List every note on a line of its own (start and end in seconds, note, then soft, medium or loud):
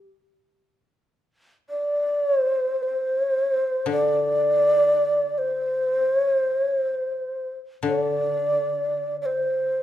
1.70 2.26 D5 medium
2.26 2.40 C#5 medium
2.40 2.83 C5 medium
2.83 3.42 C5 medium
3.42 3.53 C#5 medium
3.53 3.90 C5 medium
3.86 7.24 D3 soft
3.91 5.40 D5 medium
5.38 6.15 C5 medium
6.15 6.35 C#5 medium
6.35 6.58 C5 medium
6.58 6.79 C#5 medium
6.79 7.55 C5 medium
7.83 9.83 D3 soft
7.88 9.16 D5 medium
9.21 9.27 D5 medium
9.26 9.83 C5 medium